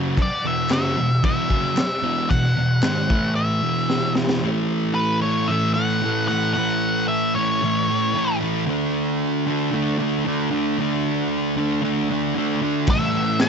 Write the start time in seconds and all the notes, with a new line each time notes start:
Already playing: F#2 C#3 F#3
0.17 kick, crash
0.22 D5
0.45 E2 B2 E3 E5
0.70 F#2 C#3 F#3 E5, snare, clap, crash
0.98 E2 B2
1.23 E2 B2 E3 E5, kick, crash
1.49 F#2 C#3 F#3, kick
1.77 muted distorted electric guitar stroke, snare, clap, crash
2.03 E2 B2 E3
2.30 E2 B2 F#5, kick, crash
2.57 E2 B2
2.83 G#2 D#3 G#3, snare, clap, crash
3.09 A2 E3 A3, kick
3.36 E5
3.62 E2 B2 E3
3.90 snare
4.15 snare
4.29 snare
4.42 A2 E3 A3
4.95 B4
5.22 E3 A3 C#5
5.48 A2 E3 A3 E5
5.74 A3 F#5
5.79 E3
6.03 A2 E3 A3
6.28 E3 A3 F#5
6.54 A2 E3 F#5
6.59 A3
7.08 E5
7.35 E3 A3 C#5
7.62 A2 E3 A3
7.88 E3 A3
8.14 A2 E3 A3
8.40 E3 A3
8.67 D3 A3 D4
9.46 A3 D4
9.72 D3 A3 D4
9.99 A3 D4
10.25 D3 A3 D4
10.50 A3 D4
10.78 D3 A3 D4
11.57 A3 D4
11.82 D3 A3 D4
12.10 A3 D4
12.35 D3 A3 D4
12.62 A3 D4
12.87 A2 E3 E5, kick, crash
12.91 A3
13.40 A5, snare, clap, crash